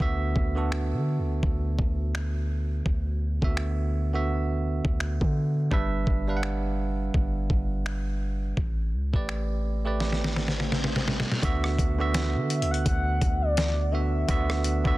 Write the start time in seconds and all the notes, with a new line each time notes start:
0.00 D2 D3 B3 F#4 E5, kick
0.36 D2, kick
0.55 D3 B3 F#4 A4
0.72 finger snap
0.93 D3
1.19 D2
1.43 D2, kick
1.79 D2, kick
2.15 finger snap
2.86 D2, kick
3.42 D2 D3 B3 F#4 E5, kick
3.57 finger snap
4.13 D3 B3 F#4 E5
4.85 D2, kick
5.00 finger snap
5.21 D3, kick
5.71 G1 G3 D4 B4 E5, kick
6.07 G1, kick
6.27 G3 D4 B4 F5
6.37 F#5
6.43 finger snap
7.14 G1, kick
7.50 G1, kick
7.86 finger snap
8.57 A1, kick, swell
8.93 C#2
9.13 A1 A3 G4 B4 D5, kick
9.29 finger snap
9.85 A3 G4 B4 D5
10.00 snare
10.12 snare
10.24 snare
10.36 snare
10.48 snare
10.60 snare
10.72 snare
10.84 snare
10.96 snare
11.08 snare
11.20 snare
11.32 snare
11.42 D2 D3 B3 F#4 E5, kick, closed hi-hat
11.64 cross-stick
11.79 D2, kick, closed hi-hat
11.99 D3 B3 F#4 E5
12.14 snare, closed hi-hat
12.36 D3
12.50 E5, closed hi-hat
12.61 D2, closed hi-hat
12.71 F#5, closed hi-hat
12.86 D2 F#5, kick, closed hi-hat
13.21 D2, kick, closed hi-hat
13.42 D5
13.57 snare, closed hi-hat
13.92 D3 B3 F#4 E5
14.28 D2 D3 B3 F#4 E5, kick, closed hi-hat
14.50 cross-stick
14.64 closed hi-hat
14.85 D2 D3 B3 F#4 E5, kick